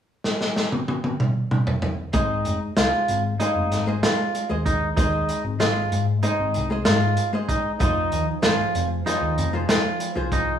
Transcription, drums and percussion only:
0.24 snare
0.41 snare
0.56 snare
0.72 high tom
0.88 high tom
1.04 high tom
1.20 mid tom
1.51 mid tom
1.67 floor tom
1.82 floor tom
2.13 kick, closed hi-hat
2.45 closed hi-hat
2.77 snare, closed hi-hat
3.08 closed hi-hat
3.40 closed hi-hat
3.72 snare, closed hi-hat
4.03 snare, closed hi-hat
4.35 closed hi-hat
4.66 kick, closed hi-hat
4.97 kick, closed hi-hat
5.29 closed hi-hat
5.60 snare, closed hi-hat
5.92 closed hi-hat
6.23 closed hi-hat
6.54 closed hi-hat
6.85 snare, closed hi-hat
7.17 closed hi-hat
7.49 kick, closed hi-hat
7.80 kick, closed hi-hat
8.12 closed hi-hat
8.43 snare, closed hi-hat
8.75 closed hi-hat
9.07 snare, closed hi-hat
9.38 closed hi-hat
9.69 snare, closed hi-hat
10.00 closed hi-hat
10.32 kick, closed hi-hat

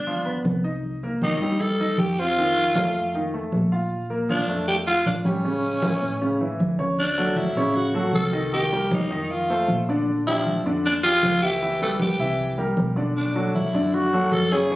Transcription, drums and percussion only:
0.07 high conga
0.26 high conga
0.45 high conga
0.83 high conga
1.03 high conga
1.22 high conga
1.41 high conga
1.60 high conga
1.79 high conga
1.98 high conga
2.36 high conga
2.56 high conga
2.75 high conga
2.95 high conga
3.14 high conga
3.34 high conga
3.52 high conga
3.91 high conga
4.10 high conga
4.29 high conga
4.48 high conga
4.68 high conga
4.87 high conga
5.06 high conga
5.25 high conga
5.44 high conga
5.64 high conga
5.82 high conga
6.03 high conga
6.22 high conga
6.41 high conga
6.60 high conga
6.79 high conga
6.98 high conga
7.18 high conga
7.36 high conga
7.55 high conga
7.75 high conga
7.94 high conga
8.13 high conga
8.52 high conga
8.72 high conga
8.91 high conga
9.11 high conga
9.30 high conga
9.49 high conga
9.68 high conga
10.07 high conga
10.27 high conga
10.46 high conga
10.66 high conga
10.85 high conga
11.03 high conga
11.23 high conga
11.61 high conga
11.81 high conga
12.00 high conga
12.20 high conga
12.38 high conga
12.59 high conga
12.77 high conga
13.16 high conga
13.36 high conga
13.55 high conga
13.74 high conga
13.94 high conga
14.12 high conga
14.32 high conga
14.70 high conga

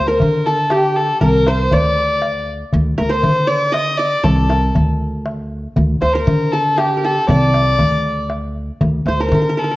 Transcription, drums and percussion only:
0.07 darbuka ka
0.20 darbuka dum
0.70 darbuka tek
0.96 darbuka ka
1.21 darbuka dum
1.47 darbuka tek
1.60 darbuka ka
1.72 darbuka dum
2.22 darbuka tek
2.47 darbuka ka
2.73 darbuka dum
2.98 darbuka tek
3.11 darbuka ka
3.23 darbuka dum
3.74 darbuka tek
3.99 darbuka ka
4.24 darbuka dum
4.50 darbuka tek
4.63 darbuka ka
4.75 darbuka dum
5.26 darbuka tek
5.76 darbuka dum
6.02 darbuka tek
6.15 darbuka ka
6.28 darbuka dum
6.78 darbuka tek
7.04 darbuka ka
7.29 darbuka dum
7.54 darbuka tek
7.79 darbuka dum
8.30 darbuka tek
8.55 darbuka ka
8.81 darbuka dum
9.07 darbuka tek
9.31 darbuka dum

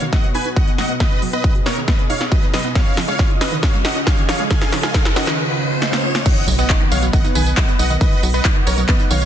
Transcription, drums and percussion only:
0.02 closed hi-hat
0.13 kick, snare, closed hi-hat
0.24 closed hi-hat
0.35 open hi-hat
0.46 closed hi-hat
0.56 kick, closed hi-hat
0.67 closed hi-hat
0.78 snare, open hi-hat
0.89 closed hi-hat
1.00 kick, snare, closed hi-hat
1.11 closed hi-hat
1.22 open hi-hat
1.33 closed hi-hat
1.44 kick, closed hi-hat
1.55 closed hi-hat
1.66 snare, open hi-hat
1.77 closed hi-hat
1.88 kick, snare, closed hi-hat
1.99 closed hi-hat
2.10 open hi-hat
2.21 snare, closed hi-hat
2.32 kick, closed hi-hat
2.43 closed hi-hat
2.54 snare, open hi-hat
2.65 closed hi-hat
2.75 kick, snare, closed hi-hat
2.86 closed hi-hat
2.97 snare, open hi-hat
3.08 closed hi-hat
3.19 kick, snare, closed hi-hat
3.30 closed hi-hat
3.41 snare, open hi-hat
3.52 closed hi-hat
3.63 kick, snare, closed hi-hat
3.74 closed hi-hat
3.85 snare, open hi-hat
3.96 closed hi-hat
4.07 kick, snare, closed hi-hat
4.18 closed hi-hat
4.29 snare, open hi-hat
4.40 closed hi-hat
4.51 kick, snare, closed hi-hat
4.62 snare, closed hi-hat
4.72 snare, open hi-hat
4.83 snare, closed hi-hat
4.94 kick, snare, closed hi-hat
5.05 snare, closed hi-hat
5.16 snare, open hi-hat
5.27 snare, closed hi-hat
5.82 snare
5.93 snare
6.15 snare
6.26 kick, closed hi-hat, crash, tambourine
6.37 closed hi-hat
6.48 open hi-hat, tambourine
6.59 closed hi-hat, tambourine
6.70 kick, clap, closed hi-hat, tambourine
6.81 closed hi-hat
6.92 open hi-hat, tambourine
7.03 closed hi-hat, tambourine
7.13 kick, closed hi-hat, tambourine
7.24 closed hi-hat, tambourine
7.35 open hi-hat, tambourine
7.46 closed hi-hat, tambourine
7.57 kick, clap, closed hi-hat, tambourine
7.68 closed hi-hat, tambourine
7.79 open hi-hat, tambourine
7.90 closed hi-hat, tambourine
8.01 kick, closed hi-hat, tambourine
8.12 closed hi-hat
8.23 open hi-hat, tambourine
8.34 closed hi-hat, tambourine
8.45 kick, clap, closed hi-hat, tambourine
8.56 closed hi-hat
8.67 open hi-hat, tambourine
8.78 closed hi-hat, tambourine
8.89 kick, clap, closed hi-hat, tambourine
9.00 closed hi-hat, tambourine
9.11 open hi-hat, tambourine
9.22 closed hi-hat, tambourine

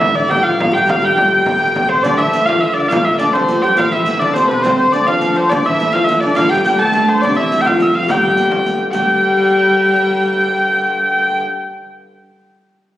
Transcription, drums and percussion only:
0.01 frame drum
0.17 frame drum
0.31 frame drum
0.47 frame drum
0.60 frame drum
0.89 frame drum
1.03 frame drum
1.18 frame drum
1.46 frame drum
1.76 frame drum
1.91 frame drum
2.04 riq, frame drum
2.21 frame drum
2.33 riq
2.49 frame drum
2.64 frame drum
2.91 riq, frame drum
3.06 frame drum
3.19 riq
3.35 frame drum
3.48 riq, frame drum
3.77 riq, frame drum
4.06 riq
4.22 frame drum
4.36 riq, frame drum
4.64 riq, frame drum
4.80 frame drum
4.93 riq
5.08 riq, frame drum
5.21 riq, frame drum
5.38 frame drum
5.51 riq, frame drum
5.67 frame drum
5.80 riq
5.95 frame drum
6.09 riq, frame drum
6.36 riq, frame drum
6.53 frame drum
6.65 riq
6.82 frame drum
6.93 riq, frame drum
7.23 riq, frame drum
7.40 frame drum
7.52 riq
7.67 frame drum
7.80 riq, frame drum
8.08 riq, frame drum
8.37 riq
8.52 riq, frame drum
8.66 riq, frame drum
8.93 riq, frame drum

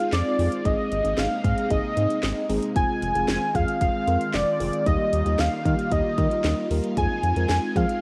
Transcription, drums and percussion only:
0.00 closed hi-hat
0.13 snare, clap, closed hi-hat
0.39 open hi-hat
0.52 closed hi-hat
0.65 kick, closed hi-hat
0.92 closed hi-hat
1.05 closed hi-hat
1.18 snare, closed hi-hat
1.44 kick, closed hi-hat
1.58 closed hi-hat
1.70 kick, closed hi-hat
1.97 closed hi-hat
2.10 closed hi-hat
2.23 snare, clap, closed hi-hat
2.50 open hi-hat
2.62 closed hi-hat
2.76 kick, closed hi-hat
3.02 closed hi-hat
3.15 closed hi-hat
3.28 snare, closed hi-hat
3.55 kick, closed hi-hat
3.68 closed hi-hat
3.81 kick, closed hi-hat
4.08 closed hi-hat
4.21 closed hi-hat
4.34 snare, clap, closed hi-hat
4.60 open hi-hat
4.73 closed hi-hat
4.86 kick, closed hi-hat
5.13 closed hi-hat
5.26 closed hi-hat
5.39 snare, closed hi-hat
5.65 kick, closed hi-hat
5.79 closed hi-hat
5.92 kick, closed hi-hat
6.18 kick, closed hi-hat
6.31 closed hi-hat
6.44 snare, clap, closed hi-hat
6.71 open hi-hat
6.84 closed hi-hat
6.97 kick, closed hi-hat
7.23 closed hi-hat
7.36 closed hi-hat
7.49 snare, closed hi-hat
7.76 kick, closed hi-hat
7.89 closed hi-hat

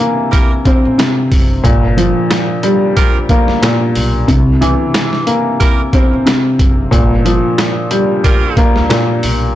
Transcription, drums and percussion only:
0.33 kick, closed hi-hat
0.65 kick, closed hi-hat
0.99 snare, closed hi-hat
1.32 kick, open hi-hat
1.64 kick, closed hi-hat
1.98 closed hi-hat
2.31 snare, closed hi-hat
2.63 closed hi-hat
2.97 kick, closed hi-hat
3.29 kick, closed hi-hat
3.48 snare
3.63 snare, closed hi-hat
3.95 open hi-hat
4.28 kick, closed hi-hat
4.62 closed hi-hat
4.94 snare, closed hi-hat
5.13 snare
5.27 closed hi-hat
5.60 kick, closed hi-hat
5.93 kick, closed hi-hat
6.27 snare, closed hi-hat
6.59 kick, closed hi-hat
6.92 kick, closed hi-hat
7.26 closed hi-hat
7.58 snare, closed hi-hat
7.91 closed hi-hat
8.24 kick, closed hi-hat
8.57 kick, closed hi-hat
8.76 snare
8.90 snare, closed hi-hat
9.23 open hi-hat

